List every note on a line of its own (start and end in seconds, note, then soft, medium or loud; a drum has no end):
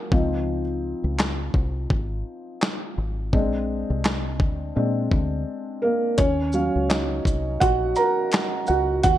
0.00 0.14 F#3 medium
0.00 0.13 A#3 soft
0.00 0.13 C#4 medium
0.11 0.93 C#2 loud
0.11 0.61 F3 medium
0.11 0.61 C4 soft
0.11 0.62 D#4 medium
0.11 kick loud
1.04 1.49 C#2 medium
1.19 snare medium
1.19 clap medium
1.54 1.86 C2 medium
1.54 kick medium
1.90 2.22 G#1 medium
1.90 kick medium
2.62 snare loud
2.62 clap medium
2.98 3.33 G#1 medium
3.33 3.83 A#1 loud
3.33 4.36 G#3 medium
3.33 4.37 C4 soft
3.33 4.37 D4 medium
3.33 kick loud
3.90 4.40 C2 medium
4.05 snare loud
4.05 clap medium
4.40 4.71 D2 loud
4.40 kick medium
4.76 5.08 A#2 medium
4.76 5.08 G#3 soft
4.76 5.08 C4 soft
4.76 5.08 D4 medium
5.12 5.43 D2 medium
5.12 kick medium
5.82 6.17 A#3 medium
5.82 6.16 A#4 medium
6.18 6.68 D#2 loud
6.18 6.53 C#4 medium
6.18 6.92 C#5 medium
6.18 kick loud
6.18 closed hi-hat medium
6.52 9.00 F#3 medium
6.52 9.01 C#4 soft
6.52 9.01 F5 medium
6.52 shaker soft
6.76 7.20 C#2 medium
6.89 7.58 D#4 medium
6.89 7.57 D#5 medium
6.89 snare medium
6.89 clap medium
6.89 closed hi-hat medium
7.25 7.57 C2 medium
7.25 kick medium
7.25 closed hi-hat soft
7.25 shaker medium
7.60 7.93 A#1 medium
7.60 7.95 F#4 medium
7.60 7.94 F#5 loud
7.60 kick medium
7.60 closed hi-hat medium
7.96 8.65 A#4 medium
7.96 8.64 A#5 loud
7.96 closed hi-hat soft
7.96 shaker soft
8.32 snare loud
8.32 clap medium
8.32 closed hi-hat medium
8.67 9.01 C#2 medium
8.67 9.03 F#4 medium
8.67 9.02 F#5 medium
8.67 shaker soft
9.03 9.18 D#2 loud
9.03 9.18 F#4 medium
9.03 9.18 F#5 loud
9.03 kick loud
9.03 closed hi-hat medium